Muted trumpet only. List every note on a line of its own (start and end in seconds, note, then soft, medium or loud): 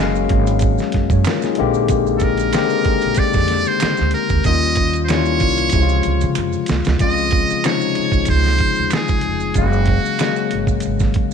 0.00 0.27 F#4 medium
2.18 2.25 A4 medium
2.24 3.20 A#4 medium
3.19 3.69 D5 loud
3.68 4.13 C5 medium
4.14 4.43 A#4 medium
4.46 4.99 D#5 loud
5.05 5.11 C5 medium
5.10 6.37 C#5 loud
7.02 7.67 D#5 loud
7.65 8.28 C#5 loud
8.30 8.95 C5 loud
8.93 9.56 G#4 medium
9.58 10.80 F#4 medium